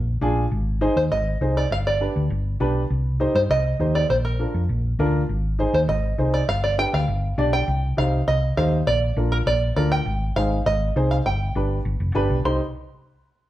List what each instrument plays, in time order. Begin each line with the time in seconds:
Already playing: fingered electric bass A#1
0.21 fingered electric bass A#1, upright piano D4 F4 G#4
0.52 fingered electric bass G#1
0.81 upright piano D#4 G#4 C5
0.96 fingered electric bass D#2, five-string banjo C5
1.11 fingered electric bass G#1, five-string banjo D#5
1.41 fingered electric bass C2, upright piano D#4 G#4 C5
1.57 five-string banjo D5
1.71 fingered electric bass G1, five-string banjo F5
1.87 five-string banjo D5
2.01 upright piano D4 G4 B4
2.16 fingered electric bass D2
2.30 fingered electric bass G1
2.60 fingered electric bass B1, upright piano D4 G4 B4
2.90 fingered electric bass C2
3.20 upright piano D#4 G4 C5
3.35 fingered electric bass G2, five-string banjo C5
3.49 fingered electric bass C2, five-string banjo D#5
3.79 fingered electric bass D#2, upright piano D#4 G4 C5
3.95 five-string banjo D5
4.09 fingered electric bass A#1, five-string banjo C5
4.25 five-string banjo A#4
4.39 upright piano D4 F4 A#4
4.54 fingered electric bass F2
4.69 fingered electric bass A#1
4.99 fingered electric bass D2, upright piano D4 F4 A#4
5.29 fingered electric bass G#1
5.59 upright piano D#4 G#4 C5
5.73 fingered electric bass D#2, five-string banjo C5
5.88 fingered electric bass G#1, five-string banjo D#5
6.18 fingered electric bass C2, upright piano D#4 G#4 C5
6.34 five-string banjo D5
6.48 fingered electric bass G1, five-string banjo F5
6.64 five-string banjo D5
6.78 upright piano D4 G4 B4, five-string banjo G5
6.93 fingered electric bass D2, five-string banjo F5
7.08 fingered electric bass G1
7.38 fingered electric bass B1, upright piano D4 G4 D5
7.53 five-string banjo G5
7.68 fingered electric bass C2
7.97 fingered electric bass C2, upright piano D#4 G4 C5, five-string banjo F5
8.28 fingered electric bass C2, five-string banjo D#5
8.57 fingered electric bass D#2, upright piano D#4 G4 C5, five-string banjo F5
8.87 fingered electric bass A#1, five-string banjo D5
9.17 fingered electric bass A#1, upright piano D4 F4 A#4
9.32 five-string banjo A#4
9.46 fingered electric bass A#1, five-string banjo D5
9.76 fingered electric bass D2, upright piano D4 F4 A#4, five-string banjo D5
9.92 five-string banjo G5
10.06 fingered electric bass G#1
10.36 fingered electric bass G#1, upright piano D#4 G#4 C5, five-string banjo F5
10.66 fingered electric bass G#1, five-string banjo D#5
10.96 fingered electric bass C2, upright piano D#4 G#4 C5
11.11 five-string banjo F5
11.26 fingered electric bass G1, five-string banjo G5
11.55 fingered electric bass G1, upright piano D4 G4 B4
11.85 fingered electric bass G1
12.00 fingered electric bass F1
12.15 fingered electric bass G1, upright piano D4 G4 B4
12.30 fingered electric bass B1
12.45 fingered electric bass C2, upright piano D#4 G4 C5, five-string banjo C6